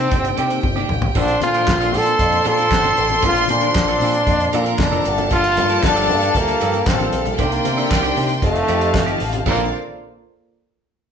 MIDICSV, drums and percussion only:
0, 0, Header, 1, 2, 480
1, 0, Start_track
1, 0, Key_signature, -2, "major"
1, 0, Tempo, 519031
1, 1074, Time_signature, 4, 2, 24, 8
1, 10281, End_track
2, 0, Start_track
2, 0, Title_t, "Drums"
2, 105, Note_on_c, 9, 42, 85
2, 109, Note_on_c, 9, 36, 127
2, 127, Note_on_c, 9, 62, 33
2, 198, Note_off_c, 9, 42, 0
2, 201, Note_off_c, 9, 36, 0
2, 219, Note_off_c, 9, 62, 0
2, 227, Note_on_c, 9, 42, 48
2, 320, Note_off_c, 9, 42, 0
2, 346, Note_on_c, 9, 42, 65
2, 359, Note_on_c, 9, 62, 28
2, 438, Note_off_c, 9, 42, 0
2, 451, Note_off_c, 9, 62, 0
2, 466, Note_on_c, 9, 42, 50
2, 558, Note_off_c, 9, 42, 0
2, 586, Note_on_c, 9, 48, 67
2, 587, Note_on_c, 9, 36, 119
2, 592, Note_on_c, 9, 63, 93
2, 679, Note_off_c, 9, 48, 0
2, 680, Note_off_c, 9, 36, 0
2, 684, Note_off_c, 9, 63, 0
2, 709, Note_on_c, 9, 63, 79
2, 801, Note_off_c, 9, 63, 0
2, 825, Note_on_c, 9, 45, 92
2, 917, Note_off_c, 9, 45, 0
2, 942, Note_on_c, 9, 43, 109
2, 951, Note_on_c, 9, 64, 84
2, 1035, Note_off_c, 9, 43, 0
2, 1043, Note_off_c, 9, 64, 0
2, 1062, Note_on_c, 9, 55, 80
2, 1068, Note_on_c, 9, 36, 103
2, 1069, Note_on_c, 9, 62, 46
2, 1155, Note_off_c, 9, 55, 0
2, 1160, Note_off_c, 9, 36, 0
2, 1161, Note_off_c, 9, 62, 0
2, 1183, Note_on_c, 9, 42, 48
2, 1275, Note_off_c, 9, 42, 0
2, 1300, Note_on_c, 9, 63, 83
2, 1309, Note_on_c, 9, 42, 81
2, 1393, Note_off_c, 9, 63, 0
2, 1401, Note_off_c, 9, 42, 0
2, 1426, Note_on_c, 9, 42, 44
2, 1518, Note_off_c, 9, 42, 0
2, 1545, Note_on_c, 9, 62, 35
2, 1552, Note_on_c, 9, 36, 120
2, 1552, Note_on_c, 9, 39, 100
2, 1556, Note_on_c, 9, 38, 120
2, 1637, Note_off_c, 9, 62, 0
2, 1645, Note_off_c, 9, 36, 0
2, 1645, Note_off_c, 9, 39, 0
2, 1648, Note_off_c, 9, 38, 0
2, 1676, Note_on_c, 9, 42, 55
2, 1768, Note_off_c, 9, 42, 0
2, 1778, Note_on_c, 9, 62, 33
2, 1778, Note_on_c, 9, 64, 66
2, 1793, Note_on_c, 9, 46, 65
2, 1871, Note_off_c, 9, 62, 0
2, 1871, Note_off_c, 9, 64, 0
2, 1886, Note_off_c, 9, 46, 0
2, 1907, Note_on_c, 9, 42, 56
2, 1999, Note_off_c, 9, 42, 0
2, 2027, Note_on_c, 9, 36, 118
2, 2029, Note_on_c, 9, 42, 82
2, 2119, Note_off_c, 9, 36, 0
2, 2121, Note_off_c, 9, 42, 0
2, 2148, Note_on_c, 9, 42, 45
2, 2240, Note_off_c, 9, 42, 0
2, 2267, Note_on_c, 9, 42, 68
2, 2274, Note_on_c, 9, 62, 28
2, 2359, Note_off_c, 9, 42, 0
2, 2366, Note_off_c, 9, 62, 0
2, 2388, Note_on_c, 9, 42, 50
2, 2480, Note_off_c, 9, 42, 0
2, 2505, Note_on_c, 9, 62, 42
2, 2505, Note_on_c, 9, 63, 93
2, 2507, Note_on_c, 9, 36, 124
2, 2513, Note_on_c, 9, 39, 91
2, 2517, Note_on_c, 9, 38, 110
2, 2598, Note_off_c, 9, 62, 0
2, 2598, Note_off_c, 9, 63, 0
2, 2599, Note_off_c, 9, 36, 0
2, 2606, Note_off_c, 9, 39, 0
2, 2609, Note_off_c, 9, 38, 0
2, 2625, Note_on_c, 9, 63, 81
2, 2626, Note_on_c, 9, 42, 46
2, 2717, Note_off_c, 9, 63, 0
2, 2719, Note_off_c, 9, 42, 0
2, 2746, Note_on_c, 9, 42, 62
2, 2755, Note_on_c, 9, 62, 34
2, 2839, Note_off_c, 9, 42, 0
2, 2847, Note_off_c, 9, 62, 0
2, 2859, Note_on_c, 9, 42, 47
2, 2866, Note_on_c, 9, 64, 80
2, 2951, Note_off_c, 9, 42, 0
2, 2959, Note_off_c, 9, 64, 0
2, 2981, Note_on_c, 9, 42, 86
2, 2987, Note_on_c, 9, 36, 111
2, 2991, Note_on_c, 9, 62, 42
2, 3074, Note_off_c, 9, 42, 0
2, 3079, Note_off_c, 9, 36, 0
2, 3084, Note_off_c, 9, 62, 0
2, 3104, Note_on_c, 9, 42, 53
2, 3197, Note_off_c, 9, 42, 0
2, 3218, Note_on_c, 9, 62, 34
2, 3218, Note_on_c, 9, 63, 78
2, 3226, Note_on_c, 9, 42, 84
2, 3310, Note_off_c, 9, 62, 0
2, 3310, Note_off_c, 9, 63, 0
2, 3319, Note_off_c, 9, 42, 0
2, 3341, Note_on_c, 9, 42, 47
2, 3433, Note_off_c, 9, 42, 0
2, 3463, Note_on_c, 9, 62, 39
2, 3470, Note_on_c, 9, 36, 127
2, 3471, Note_on_c, 9, 39, 95
2, 3475, Note_on_c, 9, 38, 127
2, 3556, Note_off_c, 9, 62, 0
2, 3563, Note_off_c, 9, 36, 0
2, 3564, Note_off_c, 9, 39, 0
2, 3567, Note_off_c, 9, 38, 0
2, 3589, Note_on_c, 9, 42, 52
2, 3681, Note_off_c, 9, 42, 0
2, 3702, Note_on_c, 9, 62, 34
2, 3702, Note_on_c, 9, 64, 71
2, 3707, Note_on_c, 9, 46, 67
2, 3794, Note_off_c, 9, 62, 0
2, 3794, Note_off_c, 9, 64, 0
2, 3800, Note_off_c, 9, 46, 0
2, 3826, Note_on_c, 9, 42, 51
2, 3918, Note_off_c, 9, 42, 0
2, 3948, Note_on_c, 9, 36, 127
2, 3951, Note_on_c, 9, 42, 90
2, 3963, Note_on_c, 9, 62, 36
2, 4040, Note_off_c, 9, 36, 0
2, 4043, Note_off_c, 9, 42, 0
2, 4055, Note_off_c, 9, 62, 0
2, 4072, Note_on_c, 9, 42, 48
2, 4164, Note_off_c, 9, 42, 0
2, 4188, Note_on_c, 9, 42, 69
2, 4281, Note_off_c, 9, 42, 0
2, 4308, Note_on_c, 9, 42, 48
2, 4401, Note_off_c, 9, 42, 0
2, 4427, Note_on_c, 9, 36, 119
2, 4432, Note_on_c, 9, 39, 95
2, 4433, Note_on_c, 9, 63, 91
2, 4435, Note_on_c, 9, 38, 127
2, 4519, Note_off_c, 9, 36, 0
2, 4524, Note_off_c, 9, 39, 0
2, 4526, Note_off_c, 9, 63, 0
2, 4528, Note_off_c, 9, 38, 0
2, 4546, Note_on_c, 9, 63, 77
2, 4553, Note_on_c, 9, 42, 43
2, 4639, Note_off_c, 9, 63, 0
2, 4645, Note_off_c, 9, 42, 0
2, 4673, Note_on_c, 9, 42, 63
2, 4674, Note_on_c, 9, 62, 31
2, 4766, Note_off_c, 9, 42, 0
2, 4766, Note_off_c, 9, 62, 0
2, 4789, Note_on_c, 9, 42, 47
2, 4790, Note_on_c, 9, 64, 88
2, 4881, Note_off_c, 9, 42, 0
2, 4883, Note_off_c, 9, 64, 0
2, 4908, Note_on_c, 9, 42, 73
2, 4910, Note_on_c, 9, 36, 109
2, 4914, Note_on_c, 9, 62, 44
2, 5001, Note_off_c, 9, 42, 0
2, 5003, Note_off_c, 9, 36, 0
2, 5007, Note_off_c, 9, 62, 0
2, 5028, Note_on_c, 9, 42, 53
2, 5121, Note_off_c, 9, 42, 0
2, 5152, Note_on_c, 9, 42, 85
2, 5153, Note_on_c, 9, 62, 35
2, 5153, Note_on_c, 9, 63, 77
2, 5244, Note_off_c, 9, 42, 0
2, 5245, Note_off_c, 9, 62, 0
2, 5245, Note_off_c, 9, 63, 0
2, 5269, Note_on_c, 9, 42, 52
2, 5361, Note_off_c, 9, 42, 0
2, 5394, Note_on_c, 9, 36, 126
2, 5398, Note_on_c, 9, 39, 104
2, 5401, Note_on_c, 9, 38, 124
2, 5487, Note_off_c, 9, 36, 0
2, 5490, Note_off_c, 9, 39, 0
2, 5493, Note_off_c, 9, 38, 0
2, 5518, Note_on_c, 9, 42, 51
2, 5610, Note_off_c, 9, 42, 0
2, 5618, Note_on_c, 9, 62, 35
2, 5618, Note_on_c, 9, 64, 75
2, 5634, Note_on_c, 9, 46, 60
2, 5710, Note_off_c, 9, 62, 0
2, 5710, Note_off_c, 9, 64, 0
2, 5727, Note_off_c, 9, 46, 0
2, 5753, Note_on_c, 9, 42, 62
2, 5845, Note_off_c, 9, 42, 0
2, 5871, Note_on_c, 9, 36, 123
2, 5876, Note_on_c, 9, 42, 94
2, 5878, Note_on_c, 9, 62, 36
2, 5963, Note_off_c, 9, 36, 0
2, 5968, Note_off_c, 9, 42, 0
2, 5971, Note_off_c, 9, 62, 0
2, 5990, Note_on_c, 9, 42, 50
2, 6082, Note_off_c, 9, 42, 0
2, 6113, Note_on_c, 9, 42, 67
2, 6119, Note_on_c, 9, 62, 30
2, 6205, Note_off_c, 9, 42, 0
2, 6212, Note_off_c, 9, 62, 0
2, 6229, Note_on_c, 9, 42, 49
2, 6322, Note_off_c, 9, 42, 0
2, 6349, Note_on_c, 9, 36, 127
2, 6350, Note_on_c, 9, 62, 45
2, 6350, Note_on_c, 9, 63, 86
2, 6356, Note_on_c, 9, 39, 100
2, 6359, Note_on_c, 9, 38, 127
2, 6442, Note_off_c, 9, 36, 0
2, 6443, Note_off_c, 9, 62, 0
2, 6443, Note_off_c, 9, 63, 0
2, 6448, Note_off_c, 9, 39, 0
2, 6451, Note_off_c, 9, 38, 0
2, 6473, Note_on_c, 9, 42, 46
2, 6476, Note_on_c, 9, 63, 78
2, 6566, Note_off_c, 9, 42, 0
2, 6568, Note_off_c, 9, 63, 0
2, 6590, Note_on_c, 9, 42, 66
2, 6604, Note_on_c, 9, 62, 34
2, 6683, Note_off_c, 9, 42, 0
2, 6696, Note_off_c, 9, 62, 0
2, 6709, Note_on_c, 9, 42, 48
2, 6723, Note_on_c, 9, 64, 90
2, 6802, Note_off_c, 9, 42, 0
2, 6816, Note_off_c, 9, 64, 0
2, 6831, Note_on_c, 9, 42, 79
2, 6832, Note_on_c, 9, 36, 110
2, 6850, Note_on_c, 9, 62, 44
2, 6924, Note_off_c, 9, 42, 0
2, 6925, Note_off_c, 9, 36, 0
2, 6942, Note_off_c, 9, 62, 0
2, 6954, Note_on_c, 9, 42, 53
2, 7046, Note_off_c, 9, 42, 0
2, 7073, Note_on_c, 9, 62, 35
2, 7073, Note_on_c, 9, 63, 78
2, 7075, Note_on_c, 9, 42, 81
2, 7166, Note_off_c, 9, 62, 0
2, 7166, Note_off_c, 9, 63, 0
2, 7168, Note_off_c, 9, 42, 0
2, 7193, Note_on_c, 9, 42, 45
2, 7286, Note_off_c, 9, 42, 0
2, 7316, Note_on_c, 9, 36, 122
2, 7316, Note_on_c, 9, 62, 35
2, 7320, Note_on_c, 9, 39, 99
2, 7323, Note_on_c, 9, 38, 123
2, 7408, Note_off_c, 9, 36, 0
2, 7408, Note_off_c, 9, 62, 0
2, 7413, Note_off_c, 9, 39, 0
2, 7416, Note_off_c, 9, 38, 0
2, 7435, Note_on_c, 9, 42, 54
2, 7528, Note_off_c, 9, 42, 0
2, 7544, Note_on_c, 9, 64, 68
2, 7555, Note_on_c, 9, 46, 66
2, 7636, Note_off_c, 9, 64, 0
2, 7647, Note_off_c, 9, 46, 0
2, 7667, Note_on_c, 9, 42, 54
2, 7760, Note_off_c, 9, 42, 0
2, 7790, Note_on_c, 9, 36, 123
2, 7791, Note_on_c, 9, 42, 89
2, 7882, Note_off_c, 9, 36, 0
2, 7883, Note_off_c, 9, 42, 0
2, 7912, Note_on_c, 9, 42, 43
2, 8004, Note_off_c, 9, 42, 0
2, 8031, Note_on_c, 9, 42, 69
2, 8124, Note_off_c, 9, 42, 0
2, 8149, Note_on_c, 9, 42, 49
2, 8242, Note_off_c, 9, 42, 0
2, 8269, Note_on_c, 9, 36, 119
2, 8275, Note_on_c, 9, 62, 44
2, 8275, Note_on_c, 9, 63, 85
2, 8276, Note_on_c, 9, 39, 101
2, 8279, Note_on_c, 9, 38, 119
2, 8361, Note_off_c, 9, 36, 0
2, 8368, Note_off_c, 9, 39, 0
2, 8368, Note_off_c, 9, 62, 0
2, 8368, Note_off_c, 9, 63, 0
2, 8372, Note_off_c, 9, 38, 0
2, 8391, Note_on_c, 9, 42, 42
2, 8391, Note_on_c, 9, 63, 77
2, 8484, Note_off_c, 9, 42, 0
2, 8484, Note_off_c, 9, 63, 0
2, 8507, Note_on_c, 9, 46, 68
2, 8599, Note_off_c, 9, 46, 0
2, 8625, Note_on_c, 9, 42, 51
2, 8638, Note_on_c, 9, 64, 81
2, 8718, Note_off_c, 9, 42, 0
2, 8730, Note_off_c, 9, 64, 0
2, 8747, Note_on_c, 9, 49, 87
2, 8750, Note_on_c, 9, 36, 114
2, 8758, Note_on_c, 9, 63, 89
2, 8840, Note_off_c, 9, 49, 0
2, 8843, Note_off_c, 9, 36, 0
2, 8850, Note_off_c, 9, 63, 0
2, 10281, End_track
0, 0, End_of_file